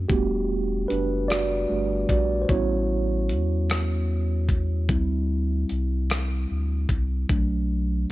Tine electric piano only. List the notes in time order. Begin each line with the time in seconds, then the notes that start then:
0.09 G3 A3 B3 D4 F#4 G4
0.88 D4 B4
1.28 F#4 D5
1.69 G3 A3 D4 F#4
2.09 F#4 D5
2.42 C5
2.49 G3 B3 C#4 E4 F#4 C#5
4.89 G3 C4 E4
7.29 F#3 A3 D4